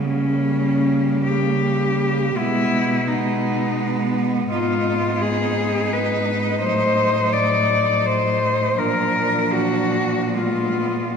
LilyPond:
<<
  \new Staff \with { instrumentName = "Cello" } { \time 3/4 \key gis \minor \tempo 4 = 83 des'4. g'4. | e'4 dis'4. r8 | \key bes \phrygian f'4 aes'4 ces''4 | c''4 d''4 c''4 |
bes'4 ges'4 f'4 | }
  \new Staff \with { instrumentName = "Cello" } { \time 3/4 \key gis \minor bes2. | b4 b2 | \key bes \phrygian ees'2.~ | ees'2. |
d'2 ces'4 | }
  \new Staff \with { instrumentName = "Cello" } { \clef bass \time 3/4 \key gis \minor g2. | gis4 gis2 | \key bes \phrygian ces'2. | fis2. |
f2 aes4 | }
  \new Staff \with { instrumentName = "Cello" } { \clef bass \time 3/4 \key gis \minor cis2. | b,2. | \key bes \phrygian aes,2. | a,2. |
bes,2. | }
>>